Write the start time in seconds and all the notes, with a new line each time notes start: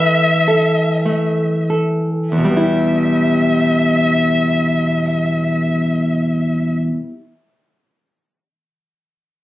Already playing: E3 A4 B4 E5
0.48 A4
1.06 A3
1.70 A4
2.32 E2 E5
2.38 B2
2.45 G3
2.50 B3
2.57 E4
2.63 G4